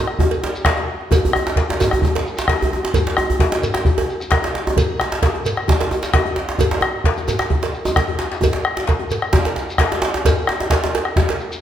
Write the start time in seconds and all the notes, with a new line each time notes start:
0.07 bombo rim
0.19 bombo rim, bombo low, djembe tone, djembe bass
0.31 cowbell, shekere
0.42 bombo rim, djembe slap
0.53 bombo rim, shekere
0.65 bombo rim, bombo low, cowbell, djembe slap
0.77 bombo rim, djembe slap, djembe tone
0.88 bombo rim
1.01 djembe slap
1.11 bombo low, cowbell, djembe tone, djembe bass, shekere
1.23 djembe slap, djembe bass
1.33 bombo rim, djembe tone
1.47 djembe slap
1.56 bombo rim, bombo low, cowbell, djembe slap, shekere
1.69 djembe slap, djembe tone
1.80 cowbell, djembe tone, shekere
1.91 bombo rim, djembe bass
2.02 bombo low, djembe tone, djembe bass, shekere
2.14 bombo rim, cowbell, djembe slap
2.26 shekere
2.37 bombo rim, djembe slap, shekere
2.48 bombo rim, bombo low, cowbell, djembe slap, djembe tone
2.61 djembe slap, djembe tone, djembe bass
2.73 djembe tone
2.83 bombo rim, djembe slap
2.94 bombo low, cowbell, djembe bass, shekere
3.07 djembe slap
3.17 bombo rim, djembe tone
3.30 djembe bass
3.39 bombo rim, bombo low, cowbell, djembe slap, djembe tone, shekere
3.52 djembe slap, djembe tone
3.63 cowbell, shekere
3.74 bombo rim, djembe slap
3.85 bombo low, djembe bass, shekere
3.97 bombo rim, cowbell, djembe tone
4.10 shekere
4.20 bombo rim, shekere
4.31 bombo rim, bombo low, cowbell, djembe slap
4.42 djembe slap, djembe tone
4.44 djembe slap
4.55 djembe slap
4.67 djembe tone
4.76 bombo low, cowbell, djembe bass, shekere
4.90 djembe slap
5.00 bombo rim, djembe slap
5.12 djembe slap
5.22 bombo rim, bombo low, cowbell, djembe slap, shekere
5.35 djembe slap, djembe tone
5.46 cowbell, shekere
5.57 bombo rim
5.68 bombo low, djembe slap, djembe bass, shekere
5.80 bombo rim, cowbell, djembe slap
5.91 djembe tone, shekere
6.03 bombo rim, djembe slap, shekere
6.14 bombo rim, bombo low, cowbell, djembe slap, djembe tone
6.26 djembe slap, djembe tone
6.36 djembe slap
6.48 bombo rim, djembe slap
6.58 bombo rim, bombo low, cowbell, djembe tone, djembe bass, shekere
6.71 djembe slap
6.81 bombo rim, djembe slap, djembe tone
7.04 bombo rim, bombo low, cowbell, djembe slap
7.16 djembe slap, djembe tone, shekere
7.28 cowbell, djembe tone, shekere
7.39 bombo rim, djembe slap
7.50 bombo rim, bombo low, djembe slap, djembe bass
7.63 cowbell, djembe slap, shekere
7.74 bombo rim, shekere
7.85 djembe tone, djembe bass, shekere
7.96 bombo rim, bombo low, cowbell, djembe slap, djembe bass, shekere
8.08 djembe bass
8.19 bombo rim, djembe slap, shekere
8.32 djembe slap, shekere
8.41 bombo low, cowbell, djembe tone, djembe bass, shekere
8.53 djembe slap
8.65 bombo rim
8.77 djembe slap
8.87 bombo rim, bombo low, cowbell, djembe slap, shekere
8.99 djembe slap, djembe tone
9.11 cowbell, shekere
9.22 bombo rim
9.33 bombo low, djembe slap, djembe bass, shekere
9.45 bombo rim, cowbell, djembe slap
9.56 djembe slap, shekere
9.68 bombo rim, shekere
9.78 bombo rim, bombo low, cowbell, djembe slap
9.92 djembe slap, djembe tone
10.02 djembe slap
10.14 djembe slap
10.25 bombo low, cowbell, djembe slap, djembe bass, shekere
10.38 djembe slap
10.47 bombo rim, djembe slap
10.60 djembe slap
10.70 bombo rim, bombo low, cowbell, djembe slap, shekere
10.83 djembe slap, djembe tone
10.95 cowbell, djembe slap
11.05 bombo rim
11.16 bombo low, djembe slap, djembe bass, shekere
11.28 bombo rim, cowbell, djembe slap
11.40 shekere
11.51 bombo rim, shekere